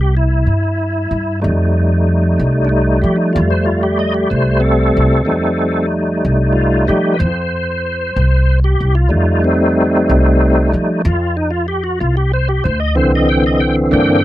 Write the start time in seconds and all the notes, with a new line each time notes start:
Already playing: C2
0.01 G4
0.17 E4
0.47 G2
1.11 G2
1.42 F2 G3 A3 D#4
2.39 C2
2.65 D4
2.69 D#4
3.02 F3 G4
3.16 D#4
3.33 F2 F4
3.50 C5
3.66 F4
3.83 G4
3.99 D#5
4.14 G4
4.30 C2 C5
4.60 C4 A4
4.97 C2
5.25 F2 G3 A3 D#4
6.25 C2
6.53 F4
6.88 F3 G3 A3 D#4 G4
7.14 B4
7.19 F2 C5
8.16 C2
8.64 G4
8.80 C2
8.95 F4
9.09 G3 A3 D#4
9.14 F2
9.44 C4
10.09 C2
10.72 F3 G3 A3 D#4
11.05 F2 F4
11.37 D#4
11.51 F4
11.68 G4
11.84 F#4
12.00 C2 F4
12.17 G4
12.33 C5
12.49 G4
12.64 D2 C5
12.80 D#5
12.95 C2 D3 E3 C4 C5
13.15 D#5
13.29 G5
13.46 D#5
13.60 G5
13.91 G2 E3 A#3 D4 G5